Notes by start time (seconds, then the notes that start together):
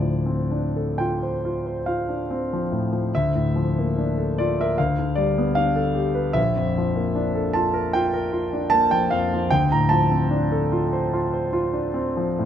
Already playing: D2 A2 D5
0.00 F3
0.26 C4
0.51 D4
0.76 A4
0.98 F4 G5
1.23 C5
1.45 F4
1.66 C5
1.86 F4 F5
2.09 D4
2.30 C4
2.53 F3
2.72 A2
2.93 F3
3.15 D2 E5
3.35 A2
3.56 F3
3.79 A#3
3.98 D4
4.18 A4
4.38 F4 D5
4.60 A#4 E5
4.78 D2 F5
4.99 D3
5.15 G3 D5
5.38 B3
5.55 D4 F5
5.76 A4
5.95 G4
6.14 B4
6.33 A#1 E5
6.56 F2
6.78 F3
6.96 A#3
7.15 D4
7.35 A4
7.53 F4 A5
7.74 A#4
7.93 F4 G5
8.13 A#4
8.33 F4
8.53 D4
8.70 A#3 A5
8.91 F3 G5
9.11 F2 F5
9.33 F3
9.51 D2 G5
9.72 A2 A#5
9.89 F3 A5
10.11 C4
10.31 D4
10.52 A4
10.72 F4
10.93 C5
11.14 F4
11.33 C5
11.53 F4
11.73 D4
11.94 C4
12.17 F3
12.39 A2